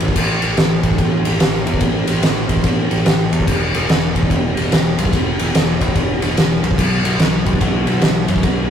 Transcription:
0.00 G#1, ride
0.08 kick
0.16 A1, kick, crash
0.42 A1, ride
0.57 A1, snare, ride
0.83 A1, kick, ride
0.91 kick
0.98 A1, kick, ride
1.25 A1, ride
1.40 A1, snare, ride
1.54 snare
1.67 E2, ride
1.74 kick
1.80 A1, kick, ride
2.07 A1, ride
2.23 A1, snare, ride
2.49 A1, kick, ride
2.57 kick
2.64 A1, kick, ride
2.91 A1, ride
3.05 A1, snare, ride
3.32 E2, ride
3.40 kick
3.47 E1, kick, crash
3.74 E1, ride
3.89 E1, snare, ride
4.15 E1, kick, ride
4.23 kick
4.30 E1, kick, ride
4.57 E1, ride
4.72 E1, snare, ride
4.98 B1, ride
5.05 kick
5.13 E1, kick, ride
5.39 E1, ride
5.54 E1, snare, ride
5.81 E1, kick, ride
5.88 kick
5.95 E1, kick, ride
6.22 E1, ride
6.37 E1, snare, ride
6.63 B1, ride
6.71 kick
6.78 B1, kick, crash
7.04 B1, ride
7.19 B1, snare, ride
7.46 B1, kick, ride
7.53 kick
7.61 B1, kick, ride
7.87 B1, ride
8.02 B1, snare, ride
8.28 F#2, ride
8.36 kick
8.43 B1, kick, ride

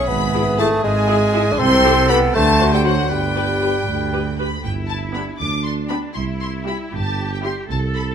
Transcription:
Already playing: G#4 C#5 E5
0.06 G#1 G#2 B3 B4 B5
0.34 E4 G#4
0.58 A3 E4 G#4 A4 A5
0.82 G#1 G#2 G#3 G#4 G#5
1.08 E4 G#4
1.33 E4 G#4
1.52 D4
1.58 C2 C3 C4 A4 C5 G5 C6
1.84 G4 A4
2.09 B3 G4 A4 B4 B5
2.34 D2 D3 A3 A4 C5 F#5 A5
2.60 F#4 C5
2.73 G3 G4 G5
2.84 F#3 F#4 C5 F#5
3.10 G1 G2 G3 G4 B4 G5
3.36 G4 B4
3.62 G4 B4
3.87 D2
4.12 G4 B4
4.39 G4 B4 B5
4.64 G1 E4 G5
4.88 A5
5.15 B3 D4 G4 G5 B5
5.39 D2 D4 D6
5.65 C6
5.89 B3 D4 G4 G5 B5
6.15 C2 E4 C6
6.42 C6
6.67 G3 E4 G4 G5 B5
6.93 G1 G4 A5
7.33 G5
7.44 G3 E4 G4 G5 C6
7.69 C2 A4 A5
7.96 B5

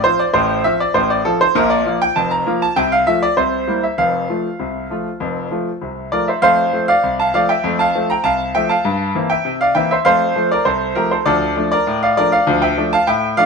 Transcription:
0.04 F3 C4 F4 C5
0.20 D5
0.34 A1 A2 C5
0.64 F3 C4 F4 E5
0.80 D5
0.94 A1 A2 C5
1.10 D5
1.25 F3 C4 F4 A4
1.41 C5
1.55 A#1 A#2 A#4
1.70 D5
1.85 F3 A#3 F4
2.02 G5
2.16 F1 F2 A5
2.31 A#5
2.46 F3 A#3 F4
2.62 A5
2.76 C2 C3 G5
2.92 F5
3.07 F3 A3 F4 E5
3.23 D5
3.37 C2 C3 C5
3.67 G3 A#3 E4
3.83 E5
3.98 F1 F2 F5
4.29 F3 A3 F4
4.59 C2 C3
4.90 F3 A3 F4
5.20 F1 F2
5.51 F3 A3 F4
5.81 C2 C3
6.12 F3 A3 F4 A#4 D5
6.28 C5 E5
6.42 F2 A3 C5 F5
6.72 F3 A3 C4
6.88 D5 F5
7.03 C2
7.20 F5 A5
7.34 F3 A3 C4 D5 F5
7.49 E5 G5
7.64 F2 A3
7.79 F5 A5
7.95 F3 A3 C4
8.10 G5 A#5
8.24 C2 F5 A5
8.55 F3 A3 C4 E5 G5
8.69 F5 A5
8.85 G2
9.15 E3 A#3 C4
9.30 E5 G5
9.45 C3
9.61 D5 F5
9.75 E3 A#3 C4 E5 G5
9.91 C5 E5
10.05 F2 A3 C5 F5
10.35 F3 A3 C4
10.52 A#4 D5
10.65 C2 A4 C5
10.95 F3 A3 C4 G4 A#4
11.11 A4 C5
11.26 D2 F3 A4 D5
11.57 F3 A3 D4
11.72 A#4 D5
11.87 A2
12.03 D5 F5
12.17 F3 A3 D4 A#4 D5
12.32 D5 F5
12.47 D2 F3
12.62 E5 G5
12.77 F3 A3 D4
12.93 F5 A5
13.07 A2 E5 G5
13.37 F3 A3 D4 D5 F5

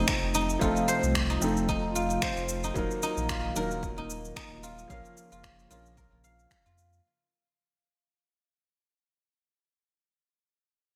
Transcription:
Already playing: C3 F3 A3 C4 D#4 F4 A4 C5, impact
0.08 finger snap, kick, shaker
0.23 F1
0.34 D#4, shaker
0.49 shaker
0.59 F1 F3 A3 C4 D#4 F4, kick, shaker
0.64 A4
0.76 shaker
0.88 C5, shaker
1.03 C2, shaker
1.15 finger snap, kick, shaker
1.30 D#4, shaker
1.40 F1 F3 A3 C4 D#4, shaker
1.44 A4
1.57 shaker
1.69 D#4, kick, shaker
1.84 F1
1.95 F4, shaker
2.10 shaker
2.22 C5, finger snap, kick, shaker
2.37 F1, shaker
2.49 shaker
2.64 D#4, shaker
2.74 D#1 D#3 F#3 A#3 D#4 F4, kick, shaker
2.78 A#4
2.91 shaker
3.03 D#4, shaker
3.17 A#1, shaker
3.29 F4, finger snap, kick, shaker
3.54 D#1 F#3 A#3 D#4 F4 A#4, shaker
3.58 A#4
3.71 shaker
3.83 kick, shaker
3.98 D#1 D#4
4.10 shaker
4.25 shaker
4.36 D#4, finger snap, kick, shaker
4.51 D#1
4.63 F4, shaker
4.78 shaker
4.88 A#1 C#3 F3 A#3 C#4 F4 F5, kick, shaker
4.92 A#4
5.05 shaker
5.17 shaker
5.32 F1 F4, shaker
5.44 finger snap, kick, shaker
5.59 shaker
5.69 A#1 F3 A#3 C#4 F4, shaker
5.73 A#4
5.86 shaker
5.97 A#4, kick, shaker
6.12 A#1
6.24 F5, shaker
6.39 shaker
6.51 finger snap, kick, shaker
6.66 F2 F4, shaker
6.78 shaker
6.93 shaker

